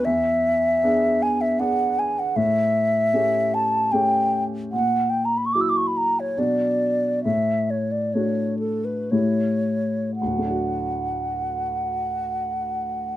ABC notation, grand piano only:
X:1
M:3/4
L:1/8
Q:1/4=72
K:D
V:1 name="Grand piano"
E,,2 [B,D^G]2 [B,DG]2 | A,,2 [A,CG]2 [A,CG]2 | ^A,,2 [F,EF]2 [B,,F,DF]2 | A,,2 [A,DF]2 [A,,A,EG]2 |
[D,,A,,F,A,DF]6 |]